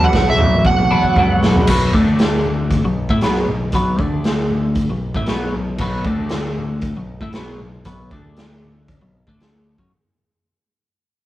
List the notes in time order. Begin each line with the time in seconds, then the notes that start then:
Already playing: B2 F#3 B3 D4
0.00 floor tom, high conga
0.04 F#5
0.13 B1, kick, snare, mid tom
0.30 E5
0.38 floor tom, mid tom, high conga, low conga
0.53 A1
0.65 F#5, kick, high tom
0.78 B1, high tom
0.91 E2 B2 F#3 B3 D4, low conga
1.03 kick, high conga
1.16 C#2 B2 F#3 B3 D4, kick, mid tom
1.43 B1, snare, low conga
1.54 floor tom, high conga
1.67 B1 B2 F#3 B3, kick, crash
1.93 D2 D3 A3 D4, kick, snare, low conga
2.08 high conga
2.19 snare, closed hi-hat
2.46 high conga, low conga
2.71 kick, closed hi-hat
2.84 B1 B2 F#3
3.09 A2 A3 E4, kick
3.21 B1 B2 F#3 B3, snare, closed hi-hat
3.35 snare
3.48 B1 B2 F#3, low conga
3.61 high conga
3.72 B1 B2 F#3 B3, kick, closed hi-hat
3.99 D2 D3 A3 D4, kick, low conga
4.12 high conga
4.24 snare, closed hi-hat
4.50 high conga, low conga
4.75 kick, closed hi-hat
4.90 B1 B2 F#3
5.14 A2 A3 E4, kick, high conga
5.26 B1 B2 F#3 B3, snare, closed hi-hat
5.54 B1 B2 F#3, low conga
5.67 high conga
5.78 B1 B2 F#3 B3, kick, crash
6.05 D2 D3 A3 D4, kick, low conga
6.20 high conga
6.29 snare, closed hi-hat
6.59 high conga, low conga
6.81 kick, closed hi-hat
6.96 B1 B2 F#3
7.21 A2 A3 E4, kick, high conga
7.33 B1 B2 F#3 B3, snare, closed hi-hat
7.61 B1 B2 F#3, low conga
7.75 high conga
7.85 B1 B2 F#3 B3, kick, closed hi-hat
8.11 D2 D3 A3 D4, kick
8.26 high conga
8.37 snare, closed hi-hat
8.65 high conga, low conga
8.88 kick, closed hi-hat
9.01 B1 B2 F#3
9.27 D2 D3 A3 D4, kick, high conga
9.40 snare, closed hi-hat
9.78 F#2 F#3 C#4, kick, high conga